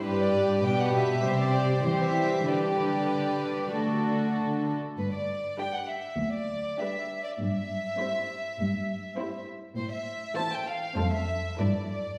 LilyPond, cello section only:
\new Staff \with { instrumentName = "Cello section" } { \clef bass \time 4/4 \key g \major \tempo 4 = 100 g,4 b,4 c4 e4 | d2 d4. r8 | g,4 r4 d,4 r4 | g,4 r4 g,4 r4 |
\key a \minor a,4 r4 f,4 g,4 | }